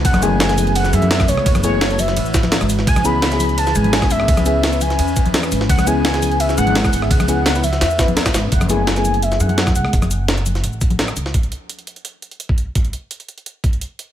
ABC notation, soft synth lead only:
X:1
M:4/4
L:1/16
Q:1/4=170
K:F#m
V:1 name="Soft synth lead"
f2 g6 f2 e4 c2- | c2 c4 e6 z4 | g2 b6 a2 g4 e2- | e2 e4 g6 z4 |
f2 g6 e2 f4 f e | f6 e8 z2 | f2 g6 e2 f4 f2 | z16 |
z16 | z16 |]